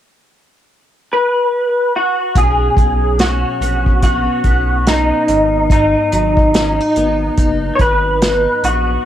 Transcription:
1.13 B4
1.96 F#4
2.35 B1 B2 C#4 G#4, kick, closed hi-hat
2.77 B1 F#3, kick, closed hi-hat
3.19 C#4 F#4, snare, closed hi-hat
3.60 A#1 B3, closed hi-hat
3.86 kick
4.02 C#4 F#4, kick, closed hi-hat
4.44 B1 B3, kick, closed hi-hat
4.87 C#4 D#4, snare, closed hi-hat
5.28 G#1 G#2, closed hi-hat
5.70 G#2 D#4, kick, closed hi-hat
6.12 G#1 F#3, closed hi-hat
6.37 kick
6.54 C#4, snare, closed hi-hat
6.80 D#4
6.96 G#1 B3, closed hi-hat
7.37 F#1 D#4, kick, closed hi-hat
7.75 G#1 C#5, kick, closed hi-hat
7.80 B3 B4
8.22 D#4, snare, closed hi-hat
8.63 A#1 B3 F#4, closed hi-hat

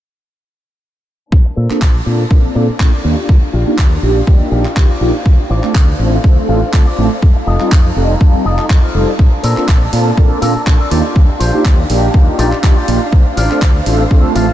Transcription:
1.32 A#1 A#3 D4 A5, kick
1.45 muted clean electric guitar stroke
1.56 A#2 A4 A#4 C5
1.70 A#3 C4 D4 F4 A4, muted fingered electric bass stroke, clap
1.81 A#1, kick, clap
2.06 A#2 A#3 C4 D4 F4 A4
2.31 A#1 A#3 C4 D4 F4 A4, kick
2.44 muted fingered electric bass stroke
2.55 A#2 A#3 C4 D4 F4 A4 A#4 D5
2.69 muted fingered electric bass stroke
2.80 A#1 A#3 C4 D4 F4 A4, kick, clap
2.92 A4 A#4 D5
3.04 D#2 A#3 D4 D#4 F4 G4 D5 F5
3.29 D#2, kick
3.41 muted clean electric guitar stroke, muted fingered electric bass stroke
3.53 A#1 F4 G4 D5
3.66 A#3 D4 D#4 F4 G4
3.78 D#2, kick, clap
4.03 A#1 A#3 D4 D#4 F4 G4
4.27 D#2 A#3 D4 D#4 F4 G4, kick
4.40 muted fingered electric bass stroke
4.51 A#1 A#3 D4 D#4 F4 G4 D5 G5
4.65 muted fingered electric bass stroke, clap
4.76 D#2 A#3 D4 D#4 F4 G4 C5, kick, clap
4.89 F4 G4 D5
5.01 A#1 A#3 D4 D#4 F4 G4
5.26 D2 C5, kick
5.38 muted clean electric guitar stroke
5.50 A1 F4 C5 D5
5.63 A3 C4 D4 F4 A4, clap
5.75 D2, kick, clap
5.99 A1 A3 C4 D4 F4 A4
6.23 D2 A3 C4 D4 F4 A4, muted clean electric guitar stroke, kick
6.37 muted fingered electric bass stroke
6.48 A1 A3 C4 D4 F4 A4 C5 F5
6.62 muted fingered electric bass stroke
6.73 D2 A3 C4 D4 F4 A4, kick, clap
6.86 F4 C5 D5
6.97 A1 A3 C4 D4 F4 A4
7.22 F2 D#4 A4, kick
7.35 muted clean electric guitar stroke, muted fingered electric bass stroke
7.46 F1 F4 A4 D#5
7.60 G3 C4 D#4 F4 A4, clap
7.72 F2, kick, clap
7.96 F1 G3 C4 D#4 F4 A4
8.20 F2 G3 C4 D#4 F4 A4, muted clean electric guitar stroke, kick
8.34 muted fingered electric bass stroke
8.45 F1 F4 A4 D#5
8.58 muted fingered electric bass stroke, clap
8.70 F2, kick, clap
8.82 F4 A4 C5
8.94 F1 G3 C4 D#4 F4 A4
9.19 A#1 A#3 D4 A5, kick
9.31 muted clean electric guitar stroke
9.43 A#2 A4 A#4 C5, open hi-hat
9.56 A#3 C4 D4 F4 A4, muted fingered electric bass stroke, clap
9.68 A#1, kick, clap
9.92 A#2 A#3 C4 D4 F4 A4, open hi-hat
10.17 A#1 A#3 C4 D4 F4 A4, muted clean electric guitar stroke, kick
10.31 muted fingered electric bass stroke
10.41 A#2 A#3 C4 D4 F4 A4 A#4 D5, open hi-hat
10.55 muted fingered electric bass stroke
10.66 A#1 A#3 C4 D4 F4 A4, kick, clap
10.79 A4 A#4 D5
10.91 D#2 A#3 D4 D#4 F4 G4 D5 F5, open hi-hat
11.16 D#2, kick
11.28 muted clean electric guitar stroke, muted fingered electric bass stroke
11.39 A#1 F4 G4 C5, open hi-hat
11.53 A#3 D4 D#4 F4 G4
11.65 D#2, kick, clap
11.89 A#1 A#3 D4 D#4 F4 G4, open hi-hat
12.13 D#2 A#3 D4 D#4 F4 G4, muted clean electric guitar stroke, kick
12.27 muted fingered electric bass stroke
12.38 A#1 A#3 D4 D#4 F4 G4 D5, open hi-hat
12.52 muted fingered electric bass stroke, clap
12.63 D#2 A#3 D4 D#4 F4 G4, kick, clap
12.76 F4 G4 D5
12.88 A#1 A#3 D4 D#4 F4 G4, open hi-hat
13.12 D2 C5, kick
13.25 muted clean electric guitar stroke
13.36 A1 F4 C5 D5, open hi-hat
13.50 A3 C4 D4 F4 A4, muted fingered electric bass stroke, clap
13.62 D2, kick, clap
13.86 A1 A3 C4 D4 F4 A4, open hi-hat
14.10 D2 A3 C4 D4 F4 A4, muted clean electric guitar stroke, kick
14.24 muted fingered electric bass stroke
14.35 A1 A3 C4 D4 F4 A4 C5 F5, open hi-hat
14.49 muted fingered electric bass stroke

